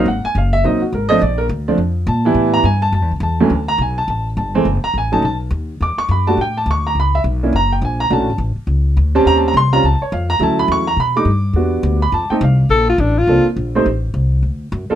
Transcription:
0.06 upright bass G#1, upright piano F#5
0.25 upright piano G#5, muted upright bass stroke
0.35 upright bass F#1, upright piano F5
0.53 upright piano E5
0.64 upright bass A#1, upright piano F#3 A#3 C4 D#4 D#5
0.82 upright piano F#4, muted upright bass stroke
0.93 upright bass G#1, upright piano A#4
1.09 upright piano F3 A3 C4 D4 D#5
1.21 upright bass A#1, upright piano D5
1.38 upright piano A#4
1.49 upright bass D2
1.68 upright piano F3 A3 C4 D4
1.78 upright bass F2
2.07 upright bass A#2, upright piano A5
2.25 upright piano E3 G3 B3 E4
2.34 upright bass A2
2.54 upright piano A#5
2.64 upright bass G2, upright piano G#5
2.82 upright piano A5
2.92 upright bass F#2, upright piano A5
3.02 upright bass E2
3.11 upright bass C#2
3.20 upright bass E2, upright piano A5
3.40 upright piano D2 E3 F#3 A3 C#4
3.50 upright bass D2
3.68 upright piano A#5
3.78 upright bass B1, upright piano G#5
3.98 upright piano A5
4.08 upright bass A1, upright piano A5
4.37 upright bass G1, upright piano A5
4.55 upright piano E3 G#3 A3 C4
4.65 upright bass F#1
4.84 upright piano A#5, muted upright bass stroke
4.94 upright bass A1
4.98 upright piano G#5
5.12 upright piano F#3 A3 C#4 D#4 A5
5.22 upright bass B1, upright piano A5
5.51 upright bass D#2
5.80 upright bass E2, upright piano D6
5.98 upright piano C#6, muted upright bass stroke
6.09 upright bass F#2, upright piano B5
6.27 upright piano G3 A3 D4 F#4 A5
6.37 upright bass A2
6.41 upright piano G5
6.57 upright piano A5
6.66 upright bass D2
6.71 upright piano C#6
6.87 upright piano A#5
6.95 upright bass C#2
7.00 upright piano B5
7.15 upright piano E5
7.24 upright bass B1
7.43 upright piano A#3 C#4 D4 E4
7.53 upright bass F#1, upright piano A#5
7.72 upright piano G5
7.82 upright bass A#1, upright piano G#5
8.00 upright piano A#5
8.10 upright bass B1, upright piano A3 C#4 D4 F#4 A5
8.19 upright bass A1
8.30 upright bass F#1
8.38 upright bass A1
8.56 muted upright bass stroke
8.67 upright bass C#2
8.97 upright bass D2
9.15 upright piano G3 C4 C#4 G4 A5
9.25 upright bass D#2, upright piano A#5
9.37 upright piano A5
9.48 upright piano A#5
9.54 upright bass C2, upright piano C6
9.73 upright piano G3 C4 C#4 F4 A#5
9.83 upright bass C#2, upright piano A5
10.01 upright piano C#5, muted upright bass stroke
10.12 upright bass F2, upright piano F5
10.30 upright piano A#5
10.39 upright bass D2, upright piano F#3 A3 C#4 E4 A5
10.59 upright piano B5
10.68 upright bass E2, upright piano C#6
10.87 upright piano A#5
10.96 upright bass B2, upright piano B5
11.16 upright piano G3 A3 D4 D#4 D6
11.25 upright bass G2
11.53 upright bass E2, upright piano G3 B3 D4 F#4
11.83 upright bass D2
12.02 upright piano B5
12.12 upright bass F2, upright piano A5
12.30 upright piano A3 C4 D#4 A4 G5, muted upright bass stroke
12.41 upright bass C2, upright piano F5
12.69 upright bass A#1, alto saxophone A4
12.89 alto saxophone F4
12.98 upright bass A1, alto saxophone D4
13.18 alto saxophone F4
13.27 upright bass C2, upright piano A#3 C4 D4 F4 A4
13.46 muted upright bass stroke
13.56 upright bass A#1
13.75 upright piano A3 C4 D#4 G4 C5
13.86 upright bass A1
14.14 upright bass C2
14.43 upright bass D2
14.72 upright bass F#2
14.90 upright piano G3 A#3 D4 F4 A4, muted upright bass stroke

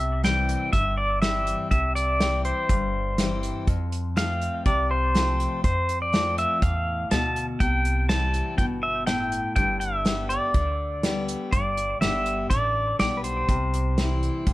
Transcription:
Already playing: upright bass C2, steel-string acoustic guitar C3, pedal steel guitar E5
0.23 steel-string acoustic guitar E3 G3 C4 E4, pedal steel guitar G5, snare, closed hi-hat
0.49 closed hi-hat
0.73 upright bass G1, steel-string acoustic guitar G2, pedal steel guitar E5, kick, closed hi-hat
0.98 pedal steel guitar D5
1.22 steel-string acoustic guitar E3 G3 C4 E4, pedal steel guitar E5, snare, closed hi-hat
1.47 closed hi-hat
1.71 upright bass C2, steel-string acoustic guitar C3, pedal steel guitar E5, kick, closed hi-hat
1.95 pedal steel guitar D5, closed hi-hat
2.20 steel-string acoustic guitar E3 G3 C4 E4, snare, closed hi-hat
2.45 pedal steel guitar C5, closed hi-hat
2.69 upright bass G1, steel-string acoustic guitar G2, kick, closed hi-hat
3.18 steel-string acoustic guitar E3 G3 C4 E4, snare, closed hi-hat
3.43 closed hi-hat
3.67 upright bass F2, steel-string acoustic guitar F2, kick, closed hi-hat
3.92 closed hi-hat
4.16 steel-string acoustic guitar F3 A3 C4 F4, pedal steel guitar F5, snare, closed hi-hat
4.41 closed hi-hat
4.66 upright bass C2, steel-string acoustic guitar C3, pedal steel guitar D5, kick, closed hi-hat
4.91 pedal steel guitar C5
5.15 steel-string acoustic guitar F3 A3 C4 F4, snare, closed hi-hat
5.40 closed hi-hat
5.64 steel-string acoustic guitar F2, upright bass F2, pedal steel guitar C5, kick, closed hi-hat
5.89 closed hi-hat
6.02 pedal steel guitar D5
6.13 steel-string acoustic guitar F3 A3 C4 F4, snare, closed hi-hat
6.38 pedal steel guitar E5, closed hi-hat
6.62 upright bass E2, steel-string acoustic guitar A2, pedal steel guitar F5, kick, closed hi-hat
7.11 upright bass D2, steel-string acoustic guitar B2, pedal steel guitar A5, snare, closed hi-hat
7.36 closed hi-hat
7.60 upright bass C2, steel-string acoustic guitar C3, pedal steel guitar G5, kick, closed hi-hat
7.85 closed hi-hat
8.09 steel-string acoustic guitar E3 G3 C4 E4, pedal steel guitar A5, snare, closed hi-hat
8.34 closed hi-hat
8.58 upright bass G1, steel-string acoustic guitar B2, pedal steel guitar G5, kick, closed hi-hat
8.83 pedal steel guitar E5
9.07 steel-string acoustic guitar A2, pedal steel guitar G5, snare, closed hi-hat
9.32 closed hi-hat
9.56 upright bass G1, steel-string acoustic guitar G2, pedal steel guitar G5, kick, closed hi-hat
9.80 pedal steel guitar E5, closed hi-hat
10.05 steel-string acoustic guitar D3 G3 B3 G4, snare, closed hi-hat
10.29 pedal steel guitar D5, closed hi-hat
10.54 upright bass D2, steel-string acoustic guitar D3, kick, closed hi-hat
11.03 steel-string acoustic guitar D3 G3 B3 G4, snare, closed hi-hat
11.28 closed hi-hat
11.52 upright bass G1, steel-string acoustic guitar G2, pedal steel guitar D5, kick, closed hi-hat
11.77 closed hi-hat
12.01 upright bass G1, steel-string acoustic guitar D3 G3 B3 G4, pedal steel guitar E5, snare, closed hi-hat
12.26 closed hi-hat
12.50 upright bass A1, steel-string acoustic guitar D3, pedal steel guitar D5, kick, closed hi-hat
12.99 upright bass B1, steel-string acoustic guitar D3 G3 B3 G4, pedal steel guitar D5, snare, closed hi-hat
13.17 pedal steel guitar B4
13.24 pedal steel guitar C5, closed hi-hat
13.49 upright bass C2, steel-string acoustic guitar C3, kick, closed hi-hat
13.74 closed hi-hat
13.98 steel-string acoustic guitar E3 G3 C4 E4, snare, closed hi-hat
14.23 closed hi-hat
14.47 upright bass G1, steel-string acoustic guitar G2, kick, closed hi-hat

